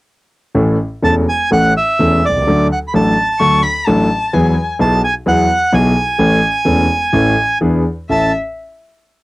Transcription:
0.54 A1 A2 E3 A3 C#4 A4
1.02 E1 E2 E3 A3 C#4 A4 A5
1.29 G#5
1.51 A1 A2 E3 A3 C#4 A4 F#5
1.77 E5
1.99 E1 E2 E3 A3 C#4 A4
2.25 B1 D5
2.36 C2
2.42 C#2
2.47 D2 D3 F#3 A3 D4 A4
2.72 F#5
2.88 B5
2.94 A1 A2 F#3 A3 D4 A4 A5
3.40 D2 D3 F#3 A3 D4 A4 C#6
3.63 B5
3.86 A1 A2 F#3 A3 D4 A4 A5
4.33 E2 E3 F#3 B3 E4 G#4 G#5
4.79 B1 B2 F#3 B3 E4 G#4 A5
5.04 G#5
5.26 E2 E3 F#3 B3 E4 G#4 F#5
5.72 B1 B2 F#3 B3 E4 G#4 G#5
6.18 A1 A2 E3 A3 C#4 A4
6.65 E1 E2 E3 A3 C#4 A4
7.13 A1 A2 E3 A3 C#4 A4
7.61 E2 E3 B3 D4 G#4
8.09 A1 C#4 E4 A4 E5 A5

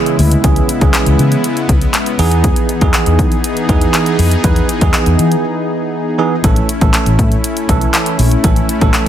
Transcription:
Already playing: C#3 E3 G#3 B3 C#4 E4 G#4
0.06 closed hi-hat
0.19 D2, open hi-hat
0.32 closed hi-hat
0.44 C#2 E3 B3 C#4 G#4, kick, closed hi-hat
0.56 closed hi-hat
0.69 closed hi-hat
0.81 C#2 E3 B3 C#4 G#4, kick, closed hi-hat
0.94 clap, closed hi-hat
1.06 C#2, closed hi-hat
1.19 C#3, closed hi-hat
1.32 closed hi-hat
1.44 closed hi-hat
1.57 closed hi-hat
1.69 C#2, kick, closed hi-hat
1.81 closed hi-hat
1.94 clap, closed hi-hat
2.06 closed hi-hat
2.19 E2 E3 B3 D#4 G#4, open hi-hat
2.31 closed hi-hat
2.44 kick, closed hi-hat
2.56 closed hi-hat
2.69 closed hi-hat
2.81 E2 E3 B3 D#4 G#4, kick, closed hi-hat
2.94 clap, closed hi-hat
3.06 E2, closed hi-hat
3.19 E3, kick, closed hi-hat
3.32 closed hi-hat
3.44 closed hi-hat
3.57 closed hi-hat
3.69 E2 E3 B3 D#4 G#4, kick, closed hi-hat
3.81 closed hi-hat
3.94 clap, closed hi-hat
4.06 closed hi-hat
4.19 F2, open hi-hat
4.31 closed hi-hat
4.44 E2 E3 B3 D#4 B4, kick, closed hi-hat
4.56 closed hi-hat
4.69 closed hi-hat
4.81 E2 E3 B3 D#4 G#4, kick, closed hi-hat
4.94 clap, closed hi-hat
5.06 E2, closed hi-hat
5.19 E3, closed hi-hat
5.32 closed hi-hat
6.19 E3 B3 D#4 G#4
6.44 A1 E3 A3 C#4 E4 A4, kick, closed hi-hat
6.56 closed hi-hat
6.69 closed hi-hat
6.81 A1 E3 A3 C#4 A4, kick, closed hi-hat
6.94 clap, closed hi-hat
7.06 A1, closed hi-hat
7.19 A2, kick, closed hi-hat
7.32 closed hi-hat
7.44 closed hi-hat
7.57 closed hi-hat
7.69 B1 E3 A3 C#4 A4, kick, closed hi-hat
7.81 closed hi-hat
7.94 clap, closed hi-hat
8.06 closed hi-hat
8.19 A#1, open hi-hat
8.31 closed hi-hat
8.44 A1 E3 A3 C#4 A4, kick, closed hi-hat
8.56 closed hi-hat
8.69 closed hi-hat
8.81 A1 E3 A3 C#4 A4, kick, closed hi-hat
8.94 clap, closed hi-hat

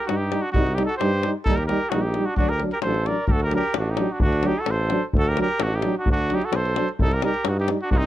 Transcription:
0.06 G2 G3 D#4 F#4, davul high
0.10 D#4
0.17 D#4 G4
0.32 G3 D#4, davul high
0.41 D4 F#4
0.52 C2 G3 D#4 F#4, davul low
0.57 D#4
0.66 davul high
0.75 G3 D#4 G4, davul high
0.80 D#4
0.85 F#4 A4, davul high
0.97 G4 C5, davul high
1.01 G2 G3 D#4
1.23 G3 D#4, davul high
1.45 D#2 G3 D#4 A4, davul low
1.55 G4 A#4, davul high
1.66 G3 G4 A#4, davul high
1.71 D#4
1.89 A#1 D#4 F#4, davul high
1.94 G3 D#4
2.01 D#4 G4
2.14 G3 D#4, davul high
2.26 D4 F#4
2.37 D2 F#3 D4 F#4, davul low
2.49 G4 A#4, davul high
2.60 F#3 D4, davul high
2.71 G4 A#4, davul high
2.82 A1 F#3 D4 A4 C5, davul high
2.94 davul high
3.06 F#3 D4 A#4 D5, davul high
3.27 D2 G4 A4 A#4, davul low
3.33 F#4
3.40 A#4, davul high
3.45 G4
3.51 F#3 D4 A#4, davul high
3.57 G4
3.63 davul high
3.74 A1 F#4, davul high
3.80 D4
3.90 D#4 G4
3.97 F#3 D4, davul high
4.12 D4 F#4
4.20 D2 F#4, davul low
4.25 D4
4.33 davul high
4.43 F#3 D4 G4, davul high
4.48 D#4
4.59 F#4 A4
4.66 A1, davul high
4.71 A4 C5
4.90 F#3 D4, davul high
5.13 D2, davul low
5.18 F#4 A4
5.25 A#4, davul high
5.29 G4
5.37 F#3 D4, davul high
5.41 G4 A#4
5.48 davul high
5.60 A1 F#4, davul high
5.64 D4
5.75 D#4 G4
5.82 F#3 D4, davul high
5.98 D4 F#4
6.06 D2, davul low
6.10 D4 F#4
6.19 davul high
6.30 F#3 D4 D#4, davul high
6.35 G4
6.42 F#4 A4, davul high
6.52 B1 A4 C5, davul high
6.65 davul high
6.76 F#3 D4, davul high
6.89 davul high
6.99 C2 D#4 A4, davul low
7.11 G4 A#4, davul high
7.22 G3 D#4 G4 A#4, davul high
7.34 davul high
7.45 G2 F#4, davul high
7.49 D#4
7.59 D#4 G4
7.68 G3 D#4, davul high
7.82 D4 F#4
7.91 C2 D#4 F#4, davul low
7.96 C4 D#4
8.03 davul high

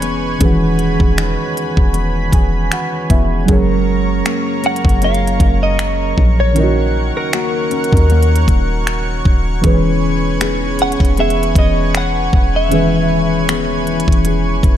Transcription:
Already playing: E1 E3 C#4 D#4 G#4 B4 C#5 D#5 G#5 C#6
0.02 B3, closed hi-hat
0.39 E1 D#3 E3 C#4 G#4 B5, kick, closed hi-hat
0.43 E3 B4 F#5
0.79 closed hi-hat
1.00 E1, kick
1.18 D#4, finger snap, closed hi-hat
1.57 closed hi-hat
1.77 E1, kick
1.94 B3, closed hi-hat
2.33 E1 G#5, kick, closed hi-hat
2.72 F#5, finger snap, closed hi-hat
3.10 E1 B3 E5, kick, closed hi-hat
3.46 F#1 F#3 C#4 G#4 A#4 C#5 A#5 C#6, kick, closed hi-hat
3.51 A#4 C#5
4.25 A#3 C#4, finger snap, closed hi-hat
4.64 C#4 F#5, closed hi-hat
4.76 closed hi-hat
4.85 F#1, kick
4.89 closed hi-hat
5.02 A#3 C#4 F4 F5, closed hi-hat
5.14 closed hi-hat
5.27 closed hi-hat
5.40 F#1, kick, closed hi-hat
5.63 D#5
5.79 finger snap, closed hi-hat
6.18 A#1, kick
6.40 C#5
6.53 D#3 C#4 E4 A#4 C#5 F#5, closed hi-hat
6.58 A#4 D#5
6.63 F#4
7.17 A#4
7.33 A#3 C#4 F#4, finger snap, closed hi-hat
7.71 C#4, closed hi-hat
7.84 closed hi-hat
7.93 D#2, kick
7.97 closed hi-hat
8.10 A#3 C#4 F#4, closed hi-hat
8.23 closed hi-hat
8.36 closed hi-hat
8.48 D#1, kick, closed hi-hat
8.87 finger snap, closed hi-hat
9.25 D#1, kick
9.61 E1 E3 C#4 G#4 B4 G#5, kick, closed hi-hat
9.66 B4 C#5
9.74 C#5
10.40 B3 D#4 G#4, finger snap, closed hi-hat
10.79 C#4 F#5, closed hi-hat
10.92 closed hi-hat
11.00 E1 D#4, kick
11.05 closed hi-hat
11.17 B3 G#4 E5, closed hi-hat
11.30 closed hi-hat
11.43 closed hi-hat
11.55 E1 D#5, kick, closed hi-hat
11.95 F#5, finger snap, closed hi-hat
12.33 E1, kick
12.56 E5
12.69 D#3 E3 C#4 G#4, closed hi-hat
12.74 E3 B4 E5
13.49 B3 G#4, finger snap, closed hi-hat
13.87 closed hi-hat
14.00 closed hi-hat
14.08 E1 D#5, kick
14.12 closed hi-hat
14.25 B3 G#4, closed hi-hat
14.63 E1, kick, closed hi-hat

